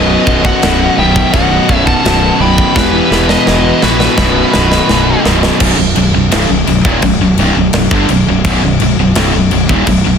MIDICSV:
0, 0, Header, 1, 6, 480
1, 0, Start_track
1, 0, Key_signature, 5, "major"
1, 0, Tempo, 711744
1, 1862, Time_signature, 4, 2, 24, 8
1, 6867, End_track
2, 0, Start_track
2, 0, Title_t, "Lead electric guitar"
2, 0, Program_c, 0, 29
2, 0, Note_on_c, 0, 75, 92
2, 308, Note_on_c, 0, 78, 97
2, 317, Note_off_c, 0, 75, 0
2, 663, Note_off_c, 0, 78, 0
2, 666, Note_on_c, 0, 79, 90
2, 888, Note_off_c, 0, 79, 0
2, 898, Note_on_c, 0, 78, 99
2, 1257, Note_off_c, 0, 78, 0
2, 1260, Note_on_c, 0, 81, 97
2, 1627, Note_on_c, 0, 83, 94
2, 1632, Note_off_c, 0, 81, 0
2, 1864, Note_on_c, 0, 71, 81
2, 1872, Note_off_c, 0, 83, 0
2, 2218, Note_on_c, 0, 75, 90
2, 2233, Note_off_c, 0, 71, 0
2, 2580, Note_on_c, 0, 71, 84
2, 2591, Note_off_c, 0, 75, 0
2, 3513, Note_off_c, 0, 71, 0
2, 6867, End_track
3, 0, Start_track
3, 0, Title_t, "Lead electric guitar"
3, 0, Program_c, 1, 29
3, 0, Note_on_c, 1, 71, 84
3, 276, Note_off_c, 1, 71, 0
3, 302, Note_on_c, 1, 75, 82
3, 637, Note_off_c, 1, 75, 0
3, 670, Note_on_c, 1, 76, 75
3, 890, Note_off_c, 1, 76, 0
3, 905, Note_on_c, 1, 75, 82
3, 1239, Note_off_c, 1, 75, 0
3, 1266, Note_on_c, 1, 78, 82
3, 1599, Note_off_c, 1, 78, 0
3, 1624, Note_on_c, 1, 79, 82
3, 1846, Note_off_c, 1, 79, 0
3, 1860, Note_on_c, 1, 67, 72
3, 2196, Note_off_c, 1, 67, 0
3, 2222, Note_on_c, 1, 71, 75
3, 2557, Note_off_c, 1, 71, 0
3, 2585, Note_on_c, 1, 66, 67
3, 3516, Note_off_c, 1, 66, 0
3, 6867, End_track
4, 0, Start_track
4, 0, Title_t, "Distorted electric guitar"
4, 0, Program_c, 2, 30
4, 0, Note_on_c, 2, 35, 106
4, 0, Note_on_c, 2, 42, 102
4, 0, Note_on_c, 2, 47, 104
4, 173, Note_off_c, 2, 35, 0
4, 177, Note_off_c, 2, 47, 0
4, 178, Note_off_c, 2, 42, 0
4, 181, Note_on_c, 2, 35, 88
4, 185, Note_on_c, 2, 47, 108
4, 186, Note_on_c, 2, 42, 96
4, 412, Note_off_c, 2, 35, 0
4, 415, Note_off_c, 2, 42, 0
4, 420, Note_on_c, 2, 35, 102
4, 422, Note_off_c, 2, 47, 0
4, 423, Note_on_c, 2, 42, 105
4, 430, Note_on_c, 2, 47, 116
4, 651, Note_off_c, 2, 35, 0
4, 654, Note_off_c, 2, 42, 0
4, 655, Note_off_c, 2, 47, 0
4, 659, Note_on_c, 2, 35, 95
4, 662, Note_on_c, 2, 42, 93
4, 663, Note_on_c, 2, 47, 98
4, 895, Note_off_c, 2, 35, 0
4, 898, Note_off_c, 2, 42, 0
4, 902, Note_off_c, 2, 47, 0
4, 903, Note_on_c, 2, 35, 92
4, 906, Note_on_c, 2, 42, 102
4, 910, Note_on_c, 2, 47, 102
4, 1133, Note_off_c, 2, 35, 0
4, 1136, Note_off_c, 2, 42, 0
4, 1139, Note_off_c, 2, 47, 0
4, 1141, Note_on_c, 2, 35, 83
4, 1145, Note_on_c, 2, 42, 89
4, 1147, Note_on_c, 2, 47, 100
4, 1372, Note_off_c, 2, 35, 0
4, 1374, Note_off_c, 2, 42, 0
4, 1376, Note_off_c, 2, 47, 0
4, 1380, Note_on_c, 2, 35, 99
4, 1383, Note_on_c, 2, 42, 101
4, 1384, Note_on_c, 2, 47, 106
4, 1614, Note_off_c, 2, 35, 0
4, 1615, Note_off_c, 2, 42, 0
4, 1619, Note_off_c, 2, 47, 0
4, 1622, Note_on_c, 2, 35, 87
4, 1623, Note_on_c, 2, 42, 90
4, 1627, Note_on_c, 2, 47, 94
4, 1848, Note_off_c, 2, 35, 0
4, 1848, Note_off_c, 2, 42, 0
4, 1850, Note_off_c, 2, 47, 0
4, 1863, Note_on_c, 2, 40, 85
4, 1867, Note_on_c, 2, 47, 107
4, 1872, Note_on_c, 2, 52, 106
4, 2093, Note_off_c, 2, 40, 0
4, 2096, Note_off_c, 2, 47, 0
4, 2100, Note_off_c, 2, 52, 0
4, 2101, Note_on_c, 2, 40, 83
4, 2105, Note_on_c, 2, 47, 103
4, 2108, Note_on_c, 2, 52, 98
4, 2334, Note_off_c, 2, 40, 0
4, 2338, Note_off_c, 2, 47, 0
4, 2341, Note_off_c, 2, 52, 0
4, 2342, Note_on_c, 2, 40, 102
4, 2346, Note_on_c, 2, 47, 95
4, 2349, Note_on_c, 2, 52, 108
4, 2577, Note_off_c, 2, 40, 0
4, 2577, Note_off_c, 2, 47, 0
4, 2579, Note_off_c, 2, 52, 0
4, 2585, Note_on_c, 2, 40, 84
4, 2586, Note_on_c, 2, 47, 98
4, 2587, Note_on_c, 2, 52, 108
4, 2809, Note_off_c, 2, 40, 0
4, 2809, Note_off_c, 2, 47, 0
4, 2810, Note_off_c, 2, 52, 0
4, 2818, Note_on_c, 2, 35, 91
4, 2820, Note_on_c, 2, 42, 84
4, 2823, Note_on_c, 2, 47, 99
4, 3048, Note_off_c, 2, 35, 0
4, 3053, Note_off_c, 2, 42, 0
4, 3056, Note_off_c, 2, 47, 0
4, 3056, Note_on_c, 2, 35, 81
4, 3061, Note_on_c, 2, 42, 97
4, 3064, Note_on_c, 2, 47, 100
4, 3289, Note_off_c, 2, 35, 0
4, 3293, Note_off_c, 2, 42, 0
4, 3294, Note_off_c, 2, 47, 0
4, 3297, Note_on_c, 2, 35, 102
4, 3301, Note_on_c, 2, 42, 106
4, 3303, Note_on_c, 2, 47, 114
4, 3531, Note_off_c, 2, 35, 0
4, 3533, Note_off_c, 2, 42, 0
4, 3536, Note_off_c, 2, 47, 0
4, 3539, Note_on_c, 2, 35, 80
4, 3541, Note_on_c, 2, 42, 90
4, 3544, Note_on_c, 2, 47, 93
4, 3766, Note_off_c, 2, 35, 0
4, 3767, Note_off_c, 2, 42, 0
4, 3768, Note_off_c, 2, 47, 0
4, 3780, Note_on_c, 2, 35, 95
4, 3783, Note_on_c, 2, 42, 105
4, 3892, Note_off_c, 2, 35, 0
4, 3893, Note_off_c, 2, 42, 0
4, 3900, Note_on_c, 2, 35, 57
4, 3901, Note_on_c, 2, 42, 60
4, 4008, Note_off_c, 2, 35, 0
4, 4015, Note_off_c, 2, 42, 0
4, 4016, Note_on_c, 2, 35, 64
4, 4024, Note_on_c, 2, 42, 79
4, 4133, Note_off_c, 2, 35, 0
4, 4134, Note_off_c, 2, 42, 0
4, 4141, Note_on_c, 2, 35, 65
4, 4142, Note_on_c, 2, 42, 68
4, 4253, Note_off_c, 2, 35, 0
4, 4254, Note_off_c, 2, 42, 0
4, 4255, Note_on_c, 2, 36, 95
4, 4257, Note_on_c, 2, 43, 101
4, 4371, Note_off_c, 2, 36, 0
4, 4372, Note_off_c, 2, 43, 0
4, 4374, Note_on_c, 2, 35, 64
4, 4377, Note_on_c, 2, 42, 71
4, 4492, Note_off_c, 2, 35, 0
4, 4496, Note_off_c, 2, 42, 0
4, 4500, Note_on_c, 2, 35, 65
4, 4504, Note_on_c, 2, 42, 64
4, 4620, Note_off_c, 2, 35, 0
4, 4623, Note_off_c, 2, 42, 0
4, 4624, Note_on_c, 2, 39, 86
4, 4627, Note_on_c, 2, 46, 104
4, 4735, Note_off_c, 2, 39, 0
4, 4737, Note_off_c, 2, 46, 0
4, 4743, Note_on_c, 2, 35, 57
4, 4747, Note_on_c, 2, 42, 74
4, 4853, Note_off_c, 2, 35, 0
4, 4857, Note_off_c, 2, 42, 0
4, 4861, Note_on_c, 2, 35, 63
4, 4865, Note_on_c, 2, 42, 68
4, 4980, Note_off_c, 2, 35, 0
4, 4983, Note_off_c, 2, 42, 0
4, 4983, Note_on_c, 2, 36, 92
4, 4987, Note_on_c, 2, 43, 102
4, 5095, Note_off_c, 2, 36, 0
4, 5097, Note_off_c, 2, 43, 0
4, 5104, Note_on_c, 2, 35, 58
4, 5110, Note_on_c, 2, 42, 71
4, 5223, Note_off_c, 2, 35, 0
4, 5226, Note_off_c, 2, 42, 0
4, 5231, Note_on_c, 2, 35, 69
4, 5233, Note_on_c, 2, 42, 74
4, 5341, Note_off_c, 2, 35, 0
4, 5343, Note_on_c, 2, 43, 91
4, 5347, Note_off_c, 2, 42, 0
4, 5351, Note_on_c, 2, 50, 104
4, 5455, Note_off_c, 2, 43, 0
4, 5459, Note_off_c, 2, 50, 0
4, 5465, Note_on_c, 2, 35, 68
4, 5467, Note_on_c, 2, 42, 69
4, 5579, Note_off_c, 2, 35, 0
4, 5582, Note_off_c, 2, 42, 0
4, 5587, Note_on_c, 2, 35, 67
4, 5590, Note_on_c, 2, 42, 67
4, 5702, Note_off_c, 2, 35, 0
4, 5705, Note_off_c, 2, 42, 0
4, 5710, Note_on_c, 2, 35, 94
4, 5714, Note_on_c, 2, 42, 94
4, 5815, Note_off_c, 2, 35, 0
4, 5818, Note_off_c, 2, 42, 0
4, 5823, Note_on_c, 2, 35, 66
4, 5826, Note_on_c, 2, 42, 72
4, 5937, Note_off_c, 2, 35, 0
4, 5938, Note_off_c, 2, 42, 0
4, 5945, Note_on_c, 2, 35, 68
4, 5946, Note_on_c, 2, 42, 72
4, 6055, Note_off_c, 2, 35, 0
4, 6060, Note_off_c, 2, 42, 0
4, 6063, Note_on_c, 2, 35, 61
4, 6068, Note_on_c, 2, 42, 77
4, 6174, Note_off_c, 2, 35, 0
4, 6177, Note_on_c, 2, 36, 93
4, 6179, Note_off_c, 2, 42, 0
4, 6182, Note_on_c, 2, 43, 105
4, 6292, Note_off_c, 2, 36, 0
4, 6294, Note_off_c, 2, 43, 0
4, 6301, Note_on_c, 2, 35, 67
4, 6303, Note_on_c, 2, 42, 77
4, 6407, Note_off_c, 2, 35, 0
4, 6410, Note_off_c, 2, 42, 0
4, 6415, Note_on_c, 2, 35, 65
4, 6418, Note_on_c, 2, 42, 77
4, 6536, Note_off_c, 2, 35, 0
4, 6539, Note_off_c, 2, 42, 0
4, 6539, Note_on_c, 2, 39, 96
4, 6542, Note_on_c, 2, 46, 106
4, 6653, Note_off_c, 2, 39, 0
4, 6655, Note_off_c, 2, 46, 0
4, 6659, Note_on_c, 2, 42, 70
4, 6660, Note_on_c, 2, 35, 64
4, 6764, Note_off_c, 2, 35, 0
4, 6768, Note_off_c, 2, 42, 0
4, 6772, Note_on_c, 2, 35, 66
4, 6777, Note_on_c, 2, 42, 78
4, 6867, Note_off_c, 2, 35, 0
4, 6867, Note_off_c, 2, 42, 0
4, 6867, End_track
5, 0, Start_track
5, 0, Title_t, "Fingered electric bass"
5, 0, Program_c, 3, 33
5, 0, Note_on_c, 3, 23, 106
5, 102, Note_off_c, 3, 23, 0
5, 181, Note_on_c, 3, 23, 93
5, 343, Note_off_c, 3, 23, 0
5, 427, Note_on_c, 3, 23, 92
5, 586, Note_off_c, 3, 23, 0
5, 662, Note_on_c, 3, 23, 93
5, 823, Note_off_c, 3, 23, 0
5, 900, Note_on_c, 3, 23, 98
5, 1062, Note_off_c, 3, 23, 0
5, 1139, Note_on_c, 3, 23, 84
5, 1302, Note_off_c, 3, 23, 0
5, 1383, Note_on_c, 3, 23, 89
5, 1544, Note_off_c, 3, 23, 0
5, 1617, Note_on_c, 3, 23, 94
5, 1780, Note_off_c, 3, 23, 0
5, 1860, Note_on_c, 3, 28, 101
5, 2021, Note_off_c, 3, 28, 0
5, 2096, Note_on_c, 3, 28, 84
5, 2259, Note_off_c, 3, 28, 0
5, 2342, Note_on_c, 3, 28, 99
5, 2503, Note_off_c, 3, 28, 0
5, 2585, Note_on_c, 3, 34, 88
5, 2745, Note_off_c, 3, 34, 0
5, 2816, Note_on_c, 3, 23, 96
5, 2979, Note_off_c, 3, 23, 0
5, 3069, Note_on_c, 3, 23, 84
5, 3227, Note_off_c, 3, 23, 0
5, 3304, Note_on_c, 3, 23, 85
5, 3464, Note_off_c, 3, 23, 0
5, 3542, Note_on_c, 3, 23, 85
5, 3703, Note_off_c, 3, 23, 0
5, 3779, Note_on_c, 3, 23, 91
5, 3892, Note_off_c, 3, 23, 0
5, 3902, Note_on_c, 3, 23, 78
5, 4013, Note_off_c, 3, 23, 0
5, 4026, Note_on_c, 3, 23, 78
5, 4135, Note_off_c, 3, 23, 0
5, 4146, Note_on_c, 3, 23, 74
5, 4255, Note_off_c, 3, 23, 0
5, 4262, Note_on_c, 3, 24, 92
5, 4373, Note_off_c, 3, 24, 0
5, 4383, Note_on_c, 3, 23, 77
5, 4494, Note_off_c, 3, 23, 0
5, 4502, Note_on_c, 3, 23, 79
5, 4613, Note_off_c, 3, 23, 0
5, 4616, Note_on_c, 3, 27, 95
5, 4730, Note_off_c, 3, 27, 0
5, 4739, Note_on_c, 3, 23, 81
5, 4851, Note_off_c, 3, 23, 0
5, 4860, Note_on_c, 3, 23, 82
5, 4972, Note_off_c, 3, 23, 0
5, 4979, Note_on_c, 3, 24, 93
5, 5092, Note_off_c, 3, 24, 0
5, 5101, Note_on_c, 3, 23, 80
5, 5213, Note_off_c, 3, 23, 0
5, 5218, Note_on_c, 3, 23, 81
5, 5331, Note_off_c, 3, 23, 0
5, 5335, Note_on_c, 3, 31, 94
5, 5449, Note_off_c, 3, 31, 0
5, 5462, Note_on_c, 3, 23, 86
5, 5573, Note_off_c, 3, 23, 0
5, 5583, Note_on_c, 3, 23, 84
5, 5694, Note_off_c, 3, 23, 0
5, 5698, Note_on_c, 3, 23, 89
5, 5811, Note_off_c, 3, 23, 0
5, 5825, Note_on_c, 3, 23, 86
5, 5934, Note_off_c, 3, 23, 0
5, 5943, Note_on_c, 3, 23, 76
5, 6054, Note_off_c, 3, 23, 0
5, 6063, Note_on_c, 3, 23, 76
5, 6173, Note_off_c, 3, 23, 0
5, 6179, Note_on_c, 3, 24, 94
5, 6292, Note_off_c, 3, 24, 0
5, 6304, Note_on_c, 3, 23, 81
5, 6414, Note_off_c, 3, 23, 0
5, 6424, Note_on_c, 3, 23, 81
5, 6534, Note_off_c, 3, 23, 0
5, 6539, Note_on_c, 3, 27, 98
5, 6651, Note_off_c, 3, 27, 0
5, 6656, Note_on_c, 3, 23, 82
5, 6770, Note_off_c, 3, 23, 0
5, 6779, Note_on_c, 3, 23, 76
5, 6867, Note_off_c, 3, 23, 0
5, 6867, End_track
6, 0, Start_track
6, 0, Title_t, "Drums"
6, 182, Note_on_c, 9, 36, 93
6, 249, Note_off_c, 9, 36, 0
6, 302, Note_on_c, 9, 36, 96
6, 369, Note_off_c, 9, 36, 0
6, 421, Note_on_c, 9, 52, 68
6, 426, Note_on_c, 9, 38, 115
6, 488, Note_off_c, 9, 52, 0
6, 494, Note_off_c, 9, 38, 0
6, 781, Note_on_c, 9, 36, 91
6, 849, Note_off_c, 9, 36, 0
6, 901, Note_on_c, 9, 36, 119
6, 903, Note_on_c, 9, 52, 61
6, 969, Note_off_c, 9, 36, 0
6, 971, Note_off_c, 9, 52, 0
6, 1141, Note_on_c, 9, 36, 88
6, 1208, Note_off_c, 9, 36, 0
6, 1261, Note_on_c, 9, 36, 79
6, 1329, Note_off_c, 9, 36, 0
6, 1385, Note_on_c, 9, 52, 65
6, 1390, Note_on_c, 9, 38, 120
6, 1452, Note_off_c, 9, 52, 0
6, 1458, Note_off_c, 9, 38, 0
6, 1741, Note_on_c, 9, 36, 89
6, 1808, Note_off_c, 9, 36, 0
6, 1860, Note_on_c, 9, 36, 107
6, 1868, Note_on_c, 9, 38, 70
6, 1928, Note_off_c, 9, 36, 0
6, 1936, Note_off_c, 9, 38, 0
6, 2105, Note_on_c, 9, 38, 72
6, 2173, Note_off_c, 9, 38, 0
6, 2221, Note_on_c, 9, 38, 73
6, 2288, Note_off_c, 9, 38, 0
6, 2341, Note_on_c, 9, 38, 90
6, 2409, Note_off_c, 9, 38, 0
6, 2579, Note_on_c, 9, 38, 89
6, 2647, Note_off_c, 9, 38, 0
6, 2698, Note_on_c, 9, 38, 77
6, 2765, Note_off_c, 9, 38, 0
6, 2817, Note_on_c, 9, 36, 106
6, 2818, Note_on_c, 9, 38, 83
6, 2884, Note_off_c, 9, 36, 0
6, 2885, Note_off_c, 9, 38, 0
6, 3059, Note_on_c, 9, 38, 96
6, 3126, Note_off_c, 9, 38, 0
6, 3181, Note_on_c, 9, 38, 75
6, 3248, Note_off_c, 9, 38, 0
6, 3300, Note_on_c, 9, 38, 105
6, 3368, Note_off_c, 9, 38, 0
6, 3544, Note_on_c, 9, 38, 102
6, 3611, Note_off_c, 9, 38, 0
6, 3663, Note_on_c, 9, 38, 97
6, 3731, Note_off_c, 9, 38, 0
6, 3777, Note_on_c, 9, 49, 117
6, 3777, Note_on_c, 9, 57, 85
6, 3780, Note_on_c, 9, 36, 113
6, 3845, Note_off_c, 9, 49, 0
6, 3845, Note_off_c, 9, 57, 0
6, 3847, Note_off_c, 9, 36, 0
6, 4017, Note_on_c, 9, 57, 58
6, 4085, Note_off_c, 9, 57, 0
6, 4260, Note_on_c, 9, 57, 79
6, 4265, Note_on_c, 9, 38, 120
6, 4327, Note_off_c, 9, 57, 0
6, 4333, Note_off_c, 9, 38, 0
6, 4500, Note_on_c, 9, 57, 61
6, 4568, Note_off_c, 9, 57, 0
6, 4619, Note_on_c, 9, 36, 116
6, 4687, Note_off_c, 9, 36, 0
6, 4735, Note_on_c, 9, 57, 73
6, 4739, Note_on_c, 9, 36, 90
6, 4802, Note_off_c, 9, 57, 0
6, 4806, Note_off_c, 9, 36, 0
6, 4975, Note_on_c, 9, 57, 59
6, 5042, Note_off_c, 9, 57, 0
6, 5212, Note_on_c, 9, 57, 81
6, 5218, Note_on_c, 9, 38, 111
6, 5280, Note_off_c, 9, 57, 0
6, 5285, Note_off_c, 9, 38, 0
6, 5336, Note_on_c, 9, 36, 106
6, 5403, Note_off_c, 9, 36, 0
6, 5454, Note_on_c, 9, 57, 59
6, 5521, Note_off_c, 9, 57, 0
6, 5695, Note_on_c, 9, 57, 83
6, 5697, Note_on_c, 9, 36, 109
6, 5762, Note_off_c, 9, 57, 0
6, 5765, Note_off_c, 9, 36, 0
6, 5933, Note_on_c, 9, 57, 64
6, 6001, Note_off_c, 9, 57, 0
6, 6173, Note_on_c, 9, 57, 85
6, 6178, Note_on_c, 9, 38, 114
6, 6240, Note_off_c, 9, 57, 0
6, 6246, Note_off_c, 9, 38, 0
6, 6414, Note_on_c, 9, 57, 62
6, 6481, Note_off_c, 9, 57, 0
6, 6537, Note_on_c, 9, 36, 106
6, 6605, Note_off_c, 9, 36, 0
6, 6654, Note_on_c, 9, 57, 77
6, 6657, Note_on_c, 9, 36, 92
6, 6722, Note_off_c, 9, 57, 0
6, 6725, Note_off_c, 9, 36, 0
6, 6867, End_track
0, 0, End_of_file